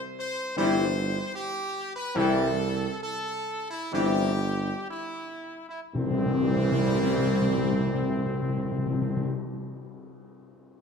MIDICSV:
0, 0, Header, 1, 7, 480
1, 0, Start_track
1, 0, Key_signature, 0, "major"
1, 0, Tempo, 773196
1, 836, Tempo, 816327
1, 1315, Time_signature, 4, 2, 24, 8
1, 1316, Tempo, 859599
1, 1796, Tempo, 910470
1, 2276, Tempo, 958466
1, 2756, Tempo, 1058201
1, 5442, End_track
2, 0, Start_track
2, 0, Title_t, "Trumpet section"
2, 0, Program_c, 0, 61
2, 118, Note_on_c, 0, 72, 127
2, 336, Note_off_c, 0, 72, 0
2, 353, Note_on_c, 0, 72, 127
2, 812, Note_off_c, 0, 72, 0
2, 835, Note_on_c, 0, 67, 127
2, 1169, Note_off_c, 0, 67, 0
2, 1193, Note_on_c, 0, 71, 127
2, 1307, Note_off_c, 0, 71, 0
2, 1315, Note_on_c, 0, 69, 127
2, 1791, Note_off_c, 0, 69, 0
2, 1797, Note_on_c, 0, 69, 127
2, 2133, Note_off_c, 0, 69, 0
2, 2157, Note_on_c, 0, 64, 118
2, 2269, Note_off_c, 0, 64, 0
2, 2276, Note_on_c, 0, 67, 127
2, 2735, Note_off_c, 0, 67, 0
2, 2754, Note_on_c, 0, 64, 114
2, 3096, Note_off_c, 0, 64, 0
2, 3114, Note_on_c, 0, 64, 95
2, 3168, Note_off_c, 0, 64, 0
2, 3232, Note_on_c, 0, 60, 127
2, 4762, Note_off_c, 0, 60, 0
2, 5442, End_track
3, 0, Start_track
3, 0, Title_t, "French horn section"
3, 0, Program_c, 1, 60
3, 353, Note_on_c, 1, 60, 127
3, 353, Note_on_c, 1, 64, 127
3, 526, Note_off_c, 1, 60, 0
3, 526, Note_off_c, 1, 64, 0
3, 1310, Note_on_c, 1, 60, 113
3, 1313, Note_on_c, 1, 64, 118
3, 1488, Note_off_c, 1, 60, 0
3, 1490, Note_off_c, 1, 64, 0
3, 2273, Note_on_c, 1, 60, 120
3, 2273, Note_on_c, 1, 64, 115
3, 2453, Note_off_c, 1, 60, 0
3, 2453, Note_off_c, 1, 64, 0
3, 3237, Note_on_c, 1, 60, 95
3, 3238, Note_on_c, 1, 57, 101
3, 4768, Note_off_c, 1, 60, 0
3, 4769, Note_off_c, 1, 57, 0
3, 5442, End_track
4, 0, Start_track
4, 0, Title_t, "Trombone section"
4, 0, Program_c, 2, 61
4, 350, Note_on_c, 2, 52, 108
4, 352, Note_on_c, 2, 55, 117
4, 525, Note_off_c, 2, 52, 0
4, 526, Note_off_c, 2, 55, 0
4, 1309, Note_on_c, 2, 52, 127
4, 1311, Note_on_c, 2, 55, 122
4, 1488, Note_off_c, 2, 52, 0
4, 1489, Note_off_c, 2, 55, 0
4, 2264, Note_on_c, 2, 52, 102
4, 2267, Note_on_c, 2, 55, 103
4, 2449, Note_off_c, 2, 52, 0
4, 2450, Note_off_c, 2, 55, 0
4, 3237, Note_on_c, 2, 55, 120
4, 3238, Note_on_c, 2, 52, 113
4, 4768, Note_off_c, 2, 55, 0
4, 4769, Note_off_c, 2, 52, 0
4, 5442, End_track
5, 0, Start_track
5, 0, Title_t, "Timpani"
5, 0, Program_c, 3, 47
5, 0, Note_on_c, 3, 48, 127
5, 90, Note_off_c, 3, 48, 0
5, 1315, Note_on_c, 3, 48, 110
5, 2011, Note_off_c, 3, 48, 0
5, 3237, Note_on_c, 3, 48, 105
5, 3272, Note_off_c, 3, 48, 0
5, 3273, Note_on_c, 3, 48, 98
5, 3306, Note_off_c, 3, 48, 0
5, 3306, Note_on_c, 3, 48, 116
5, 3341, Note_off_c, 3, 48, 0
5, 3342, Note_on_c, 3, 48, 97
5, 3376, Note_off_c, 3, 48, 0
5, 3376, Note_on_c, 3, 48, 116
5, 3411, Note_off_c, 3, 48, 0
5, 3414, Note_on_c, 3, 48, 96
5, 3447, Note_off_c, 3, 48, 0
5, 3447, Note_on_c, 3, 48, 104
5, 3481, Note_off_c, 3, 48, 0
5, 3481, Note_on_c, 3, 48, 98
5, 3514, Note_off_c, 3, 48, 0
5, 3514, Note_on_c, 3, 48, 103
5, 3549, Note_off_c, 3, 48, 0
5, 3550, Note_on_c, 3, 48, 94
5, 3583, Note_off_c, 3, 48, 0
5, 3583, Note_on_c, 3, 48, 109
5, 3618, Note_off_c, 3, 48, 0
5, 3622, Note_on_c, 3, 48, 96
5, 3656, Note_off_c, 3, 48, 0
5, 3657, Note_on_c, 3, 48, 120
5, 3688, Note_off_c, 3, 48, 0
5, 3688, Note_on_c, 3, 48, 104
5, 3722, Note_off_c, 3, 48, 0
5, 3724, Note_on_c, 3, 48, 109
5, 3758, Note_off_c, 3, 48, 0
5, 3759, Note_on_c, 3, 48, 99
5, 3794, Note_off_c, 3, 48, 0
5, 3795, Note_on_c, 3, 48, 100
5, 3829, Note_off_c, 3, 48, 0
5, 3829, Note_on_c, 3, 48, 103
5, 3863, Note_off_c, 3, 48, 0
5, 3865, Note_on_c, 3, 48, 104
5, 3900, Note_off_c, 3, 48, 0
5, 3902, Note_on_c, 3, 48, 103
5, 3936, Note_off_c, 3, 48, 0
5, 3938, Note_on_c, 3, 48, 112
5, 3972, Note_off_c, 3, 48, 0
5, 3972, Note_on_c, 3, 48, 104
5, 4007, Note_off_c, 3, 48, 0
5, 4007, Note_on_c, 3, 48, 109
5, 4042, Note_off_c, 3, 48, 0
5, 4042, Note_on_c, 3, 48, 98
5, 4075, Note_off_c, 3, 48, 0
5, 4075, Note_on_c, 3, 48, 99
5, 4107, Note_off_c, 3, 48, 0
5, 4107, Note_on_c, 3, 48, 103
5, 4140, Note_off_c, 3, 48, 0
5, 4140, Note_on_c, 3, 48, 106
5, 4175, Note_off_c, 3, 48, 0
5, 4175, Note_on_c, 3, 48, 97
5, 4210, Note_off_c, 3, 48, 0
5, 4211, Note_on_c, 3, 48, 99
5, 4245, Note_off_c, 3, 48, 0
5, 4248, Note_on_c, 3, 48, 98
5, 4282, Note_off_c, 3, 48, 0
5, 4283, Note_on_c, 3, 48, 117
5, 4318, Note_off_c, 3, 48, 0
5, 4320, Note_on_c, 3, 48, 91
5, 4354, Note_off_c, 3, 48, 0
5, 4354, Note_on_c, 3, 48, 112
5, 4389, Note_off_c, 3, 48, 0
5, 4389, Note_on_c, 3, 48, 101
5, 4423, Note_off_c, 3, 48, 0
5, 4424, Note_on_c, 3, 48, 102
5, 4456, Note_off_c, 3, 48, 0
5, 4456, Note_on_c, 3, 48, 107
5, 4490, Note_off_c, 3, 48, 0
5, 4490, Note_on_c, 3, 48, 98
5, 4521, Note_off_c, 3, 48, 0
5, 4521, Note_on_c, 3, 48, 97
5, 4556, Note_off_c, 3, 48, 0
5, 4558, Note_on_c, 3, 48, 113
5, 4592, Note_off_c, 3, 48, 0
5, 4592, Note_on_c, 3, 48, 101
5, 4626, Note_off_c, 3, 48, 0
5, 4627, Note_on_c, 3, 48, 107
5, 4660, Note_off_c, 3, 48, 0
5, 4660, Note_on_c, 3, 48, 105
5, 4694, Note_off_c, 3, 48, 0
5, 4695, Note_on_c, 3, 48, 122
5, 4728, Note_off_c, 3, 48, 0
5, 4728, Note_on_c, 3, 48, 103
5, 4763, Note_off_c, 3, 48, 0
5, 5442, End_track
6, 0, Start_track
6, 0, Title_t, "Tuba"
6, 0, Program_c, 4, 58
6, 348, Note_on_c, 4, 31, 123
6, 753, Note_off_c, 4, 31, 0
6, 1311, Note_on_c, 4, 36, 127
6, 1711, Note_off_c, 4, 36, 0
6, 2272, Note_on_c, 4, 31, 127
6, 2671, Note_off_c, 4, 31, 0
6, 3232, Note_on_c, 4, 36, 124
6, 4763, Note_off_c, 4, 36, 0
6, 5442, End_track
7, 0, Start_track
7, 0, Title_t, "Tam-tam"
7, 3235, Note_on_c, 9, 52, 78
7, 3280, Note_off_c, 9, 52, 0
7, 5442, End_track
0, 0, End_of_file